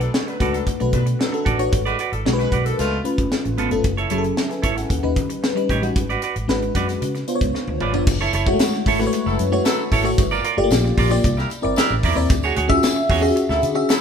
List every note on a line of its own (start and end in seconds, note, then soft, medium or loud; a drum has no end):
0.00 0.11 F#3 medium
0.00 0.30 A3 medium
0.00 0.30 D4 medium
0.00 0.11 D4 medium
0.00 0.30 F#4 medium
0.00 0.11 A4 medium
0.00 0.30 B4 medium
0.00 muted clean electric guitar stroke soft
0.00 closed hi-hat soft
0.14 0.24 C#4 medium
0.14 0.24 A4 medium
0.14 0.24 C#5 medium
0.14 muted clean electric guitar stroke soft
0.14 snare loud
0.27 0.37 F#3 medium
0.27 0.38 D4 medium
0.27 0.37 B4 medium
0.27 muted clean electric guitar stroke soft
0.27 closed hi-hat soft
0.40 0.60 C#2 medium
0.40 0.72 A3 medium
0.40 0.72 D4 medium
0.40 0.57 F#4 medium
0.40 0.72 F#4 medium
0.40 0.53 A4 medium
0.40 0.73 B4 medium
0.40 0.52 D5 medium
0.40 kick medium
0.40 closed hi-hat medium
0.53 0.64 F#3 medium
0.53 0.64 D4 medium
0.53 0.64 A4 medium
0.53 muted clean electric guitar stroke soft
0.53 closed hi-hat soft
0.67 muted clean electric guitar stroke soft
0.67 kick medium
0.67 closed hi-hat medium
0.80 0.91 B1 medium
0.80 1.23 A3 medium
0.80 1.23 D4 medium
0.80 1.23 F#4 medium
0.80 1.23 B4 medium
0.80 muted clean electric guitar stroke soft
0.80 closed hi-hat soft
0.93 1.13 B2 loud
0.93 1.03 F#3 medium
0.93 1.04 D4 medium
0.93 1.04 B4 medium
0.93 kick medium
0.93 closed hi-hat medium
1.06 muted clean electric guitar stroke soft
1.06 closed hi-hat medium
1.19 1.41 F#3 medium
1.19 1.41 D4 medium
1.19 1.41 A4 medium
1.19 muted clean electric guitar stroke soft
1.19 snare medium
1.32 1.54 A3 medium
1.32 1.54 D4 medium
1.32 1.55 F#4 medium
1.32 1.55 A4 medium
1.32 muted clean electric guitar stroke soft
1.32 closed hi-hat soft
1.45 1.66 A1 medium
1.45 1.62 F#4 medium
1.45 1.59 A4 medium
1.45 1.58 D5 medium
1.45 kick medium
1.45 closed hi-hat medium
1.59 1.72 A3 medium
1.59 1.73 D4 medium
1.59 1.73 F#4 medium
1.59 1.73 C#5 loud
1.59 muted clean electric guitar stroke soft
1.59 closed hi-hat soft
1.72 1.93 G#1 loud
1.72 muted clean electric guitar stroke soft
1.72 kick loud
1.72 closed hi-hat medium
1.86 1.96 G#3 medium
1.86 1.97 F#4 medium
1.86 1.98 F#4 medium
1.86 1.97 B4 medium
1.86 1.99 B4 medium
1.86 1.99 D5 medium
1.86 closed hi-hat soft
1.99 2.12 F#4 medium
1.99 2.12 B4 medium
1.99 2.11 D5 medium
1.99 closed hi-hat medium
2.12 2.22 G#1 medium
2.12 2.23 E4 medium
2.12 2.23 A4 medium
2.12 muted clean electric guitar stroke soft
2.12 closed hi-hat soft
2.25 2.45 B1 medium
2.25 2.79 G#3 medium
2.25 2.36 C#4 medium
2.25 2.79 D4 medium
2.25 2.79 F#4 medium
2.25 2.36 A#4 medium
2.25 2.33 A#4 medium
2.25 2.36 C#5 medium
2.25 muted clean electric guitar stroke soft
2.25 snare loud
2.33 2.82 B4 loud
2.38 2.49 G#3 medium
2.38 2.49 F#4 medium
2.38 2.49 B4 loud
2.38 muted clean electric guitar stroke soft
2.38 snare soft
2.38 closed hi-hat soft
2.52 2.72 B1 medium
2.52 2.69 F#4 medium
2.52 2.66 B4 medium
2.52 2.64 D5 medium
2.52 kick medium
2.52 closed hi-hat medium
2.65 2.76 E4 medium
2.65 2.76 A4 medium
2.65 muted clean electric guitar stroke soft
2.65 closed hi-hat medium
2.79 2.99 C#2 loud
2.79 3.00 B2 loud
2.79 3.00 A3 loud
2.79 3.00 F4 loud
2.79 muted clean electric guitar stroke soft
2.79 closed hi-hat medium
2.91 muted clean electric guitar stroke soft
3.04 3.58 A3 medium
3.04 3.58 C#4 medium
3.04 3.58 F4 medium
3.04 3.58 B4 medium
3.04 closed hi-hat medium
3.18 3.28 G#1 medium
3.18 muted clean electric guitar stroke soft
3.18 kick medium
3.18 closed hi-hat medium
3.32 muted clean electric guitar stroke soft
3.32 snare loud
3.45 3.55 A1 medium
3.45 muted clean electric guitar stroke soft
3.45 closed hi-hat soft
3.58 3.68 G#1 medium
3.58 3.75 B3 medium
3.58 3.71 F4 loud
3.58 3.70 A4 loud
3.58 closed hi-hat medium
3.71 3.81 G1 medium
3.71 3.85 A3 medium
3.71 3.85 C#4 medium
3.71 3.85 F4 medium
3.71 3.85 A4 medium
3.71 muted clean electric guitar stroke soft
3.71 closed hi-hat soft
3.84 4.04 F#1 loud
3.84 muted clean electric guitar stroke soft
3.84 kick loud
3.84 closed hi-hat medium
3.97 4.09 E4 medium
3.97 4.11 A4 medium
3.97 4.11 C#5 medium
3.97 closed hi-hat soft
4.10 4.31 F#1 medium
4.10 4.53 F#3 medium
4.10 4.53 C#4 medium
4.10 4.24 E4 medium
4.10 4.53 E4 medium
4.10 4.18 G#4 medium
4.10 4.23 A4 medium
4.10 4.22 C#5 medium
4.10 closed hi-hat medium
4.18 4.41 A4 medium
4.24 muted clean electric guitar stroke soft
4.24 closed hi-hat soft
4.37 4.50 G#4 medium
4.37 4.50 E5 medium
4.37 muted clean electric guitar stroke soft
4.37 snare loud
4.50 4.75 B4 medium
4.50 4.75 G#5 medium
4.50 muted clean electric guitar stroke soft
4.50 snare soft
4.50 closed hi-hat soft
4.62 4.83 G#1 medium
4.62 4.80 E4 medium
4.62 4.76 A4 medium
4.62 4.75 C#5 medium
4.62 kick medium
4.62 closed hi-hat medium
4.76 5.02 A4 soft
4.76 5.02 F#5 medium
4.76 muted clean electric guitar stroke soft
4.76 snare soft
4.76 closed hi-hat medium
4.90 5.00 D#2 loud
4.90 muted clean electric guitar stroke soft
4.90 kick medium
4.90 closed hi-hat medium
5.03 5.14 D#2 medium
5.03 5.45 G3 medium
5.03 5.45 C#4 medium
5.03 5.46 D#4 medium
5.03 5.46 B4 medium
5.03 muted clean electric guitar stroke soft
5.16 5.36 D#3 medium
5.16 kick medium
5.16 closed hi-hat medium
5.30 muted clean electric guitar stroke soft
5.30 closed hi-hat medium
5.43 muted clean electric guitar stroke soft
5.43 snare loud
5.55 5.77 G3 medium
5.55 5.77 C#4 medium
5.55 5.78 D#4 medium
5.55 5.78 B4 medium
5.55 muted clean electric guitar stroke soft
5.55 closed hi-hat soft
5.69 5.89 A1 medium
5.69 5.86 D#4 medium
5.69 5.83 G4 medium
5.69 5.82 C#5 medium
5.69 kick medium
5.69 closed hi-hat medium
5.81 5.95 G3 medium
5.81 5.96 C#4 medium
5.81 5.96 D#4 medium
5.81 5.96 F#4 medium
5.81 muted clean electric guitar stroke soft
5.81 closed hi-hat soft
5.96 6.15 G#1 loud
5.96 muted clean electric guitar stroke soft
5.96 kick loud
5.96 closed hi-hat loud
6.10 6.22 F#4 medium
6.10 6.22 B4 medium
6.10 6.23 D5 medium
6.10 closed hi-hat soft
6.22 6.36 F#4 medium
6.22 6.36 B4 medium
6.22 6.35 D5 medium
6.22 closed hi-hat medium
6.36 6.46 G#1 medium
6.36 muted clean electric guitar stroke soft
6.36 closed hi-hat soft
6.48 6.69 G#1 medium
6.48 7.01 G#3 medium
6.48 7.01 D4 medium
6.48 7.01 F#4 medium
6.48 7.02 B4 loud
6.48 muted clean electric guitar stroke soft
6.48 snare medium
6.62 muted clean electric guitar stroke soft
6.62 closed hi-hat soft
6.75 6.95 F#2 medium
6.75 6.92 F#4 medium
6.75 6.88 B4 medium
6.75 6.87 D5 medium
6.75 kick medium
6.75 closed hi-hat medium
6.88 muted clean electric guitar stroke soft
6.88 snare soft
6.88 closed hi-hat medium
7.02 7.21 C#3 medium
7.02 muted clean electric guitar stroke soft
7.02 closed hi-hat medium
7.15 muted clean electric guitar stroke soft
7.15 snare soft
7.15 closed hi-hat soft
7.28 7.81 B3 medium
7.28 7.81 D4 medium
7.28 7.81 F4 medium
7.28 7.35 C5 medium
7.28 closed hi-hat medium
7.35 7.84 C#5 loud
7.41 7.51 C#2 medium
7.41 muted clean electric guitar stroke soft
7.41 kick medium
7.41 closed hi-hat medium
7.54 muted clean electric guitar stroke soft
7.54 snare medium
7.68 7.77 D2 medium
7.68 muted clean electric guitar stroke soft
7.68 high tom medium
7.80 7.94 G#1 medium
7.80 7.97 F4 medium
7.80 7.94 B4 medium
7.80 7.93 D5 medium
7.80 mid tom medium
7.93 8.04 G1 medium
7.93 8.07 B3 medium
7.93 8.07 D4 medium
7.93 8.07 F4 medium
7.93 8.07 D5 medium
7.93 muted clean electric guitar stroke soft
7.93 floor tom medium
8.07 8.27 F#1 loud
8.07 muted clean electric guitar stroke soft
8.07 kick loud
8.07 crash loud
8.07 tambourine medium
8.21 8.33 E4 medium
8.21 8.33 A4 medium
8.21 8.34 C#5 medium
8.21 tambourine medium
8.33 8.53 F#1 loud
8.33 8.47 E4 medium
8.33 8.47 A4 medium
8.33 8.46 C#5 medium
8.33 closed hi-hat medium
8.47 8.53 G#3 medium
8.47 8.89 E4 medium
8.47 8.89 F#4 loud
8.47 8.90 C#5 medium
8.47 muted clean electric guitar stroke soft
8.47 kick medium
8.53 8.92 A3 medium
8.59 muted clean electric guitar stroke soft
8.59 snare loud
8.59 closed hi-hat medium
8.59 tambourine loud
8.74 muted clean electric guitar stroke soft
8.74 snare soft
8.86 9.06 G#1 medium
8.86 9.03 E4 medium
8.86 8.99 A4 medium
8.86 8.99 C#5 medium
8.86 kick medium
8.86 open hi-hat medium
8.86 tambourine soft
8.99 9.42 A3 loud
8.99 9.42 E4 medium
8.99 9.42 F#4 medium
8.99 9.06 B4 medium
8.99 muted clean electric guitar stroke medium
8.99 snare soft
8.99 tambourine soft
9.07 9.45 C#5 loud
9.13 muted clean electric guitar stroke soft
9.13 closed hi-hat medium
9.13 tambourine soft
9.25 9.36 F#1 loud
9.25 9.37 F#3 medium
9.25 9.37 E4 medium
9.25 9.37 A4 medium
9.25 muted clean electric guitar stroke soft
9.25 tambourine soft
9.39 9.59 F#2 loud
9.39 closed hi-hat medium
9.39 tambourine soft
9.52 9.94 A3 medium
9.52 9.94 E4 medium
9.52 9.95 F#4 medium
9.52 9.95 C#5 loud
9.52 muted clean electric guitar stroke soft
9.52 tambourine soft
9.65 9.82 F#3 loud
9.65 9.82 E4 medium
9.65 9.82 A4 loud
9.65 muted clean electric guitar stroke soft
9.65 snare medium
9.65 closed hi-hat medium
9.65 tambourine medium
9.79 muted clean electric guitar stroke soft
9.92 10.12 G#1 medium
9.92 10.08 E4 medium
9.92 10.05 A4 loud
9.92 10.04 C#5 medium
9.92 kick medium
9.92 open hi-hat medium
9.92 tambourine medium
10.04 10.18 A3 medium
10.04 10.18 E4 medium
10.04 10.18 F#4 medium
10.04 10.18 C#5 loud
10.04 muted clean electric guitar stroke medium
10.04 tambourine soft
10.18 10.38 G1 loud
10.18 muted clean electric guitar stroke soft
10.18 kick loud
10.18 closed hi-hat loud
10.18 tambourine medium
10.31 10.43 F4 medium
10.31 10.44 A#4 medium
10.31 10.44 D5 medium
10.31 tambourine soft
10.44 10.57 F4 medium
10.44 10.58 A#4 medium
10.44 10.57 D5 medium
10.44 closed hi-hat medium
10.57 10.67 G1 medium
10.57 10.64 A3 medium
10.57 11.00 F4 medium
10.57 11.00 G4 medium
10.57 11.00 D5 loud
10.57 muted clean electric guitar stroke soft
10.64 11.03 A#3 loud
10.70 10.90 A#1 medium
10.70 muted clean electric guitar stroke soft
10.70 snare loud
10.70 closed hi-hat medium
10.70 tambourine loud
10.84 muted clean electric guitar stroke soft
10.84 snare soft
10.97 11.17 A#1 medium
10.97 11.14 F4 medium
10.97 11.11 A#4 medium
10.97 11.10 D5 medium
10.97 kick medium
10.97 open hi-hat medium
10.97 tambourine soft
11.10 11.23 A#3 loud
11.10 11.24 F4 medium
11.10 11.24 G4 medium
11.10 11.24 D5 loud
11.10 muted clean electric guitar stroke soft
11.10 snare soft
11.10 tambourine soft
11.23 11.44 C2 medium
11.23 muted clean electric guitar stroke soft
11.23 kick medium
11.23 closed hi-hat medium
11.23 tambourine soft
11.37 11.49 G3 medium
11.37 11.49 E4 medium
11.37 11.49 A#4 medium
11.37 muted clean electric guitar stroke soft
11.37 snare soft
11.37 tambourine soft
11.50 closed hi-hat medium
11.50 tambourine soft
11.62 11.74 G1 medium
11.62 12.05 C4 medium
11.62 12.06 E4 medium
11.62 12.06 A#4 medium
11.62 12.06 D5 loud
11.62 muted clean electric guitar stroke soft
11.76 11.94 G3 medium
11.76 11.94 E4 loud
11.76 11.94 A#4 loud
11.76 muted clean electric guitar stroke soft
11.76 snare loud
11.76 closed hi-hat medium
11.76 tambourine medium
11.90 12.00 A1 medium
11.90 muted clean electric guitar stroke soft
12.03 12.13 E2 medium
12.03 12.20 E4 medium
12.03 12.17 A#4 medium
12.03 12.16 D5 loud
12.03 kick medium
12.03 open hi-hat medium
12.03 tambourine medium
12.15 12.26 D#2 medium
12.15 12.29 C4 medium
12.15 12.29 E4 medium
12.15 12.30 A#4 medium
12.15 12.30 D5 loud
12.15 muted clean electric guitar stroke soft
12.15 tambourine soft
12.29 12.50 D2 loud
12.29 muted clean electric guitar stroke soft
12.29 kick loud
12.29 closed hi-hat medium
12.29 tambourine medium
12.43 12.55 F#4 medium
12.43 12.56 G#4 medium
12.43 12.56 C#5 medium
12.43 tambourine medium
12.56 12.76 D2 loud
12.56 12.69 F#4 medium
12.56 12.70 G#4 medium
12.56 12.69 C#5 medium
12.56 closed hi-hat medium
12.68 13.11 C#4 medium
12.68 12.75 F4 medium
12.68 13.12 G#4 loud
12.68 13.12 E5 loud
12.68 muted clean electric guitar stroke soft
12.68 kick medium
12.75 13.15 F#4 medium
12.83 muted clean electric guitar stroke soft
12.83 snare loud
12.83 closed hi-hat medium
12.83 tambourine loud
12.96 muted clean electric guitar stroke medium
13.10 13.29 E2 medium
13.10 13.26 F#4 medium
13.10 13.23 G#4 medium
13.10 13.21 C#5 loud
13.10 kick medium
13.10 open hi-hat medium
13.10 tambourine soft
13.21 13.64 C#4 medium
13.21 13.29 F4 medium
13.21 13.65 G#4 medium
13.21 13.65 E5 loud
13.21 muted clean electric guitar stroke soft
13.28 13.68 F#4 medium
13.36 muted clean electric guitar stroke soft
13.36 closed hi-hat medium
13.36 tambourine soft
13.49 13.59 D2 medium
13.49 13.61 F#3 medium
13.49 13.60 E4 medium
13.49 13.61 A4 medium
13.49 muted clean electric guitar stroke soft
13.49 snare soft
13.49 tambourine soft
13.62 13.82 D3 loud
13.62 closed hi-hat medium
13.62 tambourine soft
13.75 14.01 C#4 medium
13.75 14.01 F#4 medium
13.75 14.01 G#4 medium
13.75 14.01 E5 loud
13.75 muted clean electric guitar stroke soft
13.89 14.01 F#3 medium
13.89 14.01 E4 loud
13.89 14.01 A4 loud
13.89 muted clean electric guitar stroke soft
13.89 snare loud
13.89 closed hi-hat medium
13.89 tambourine medium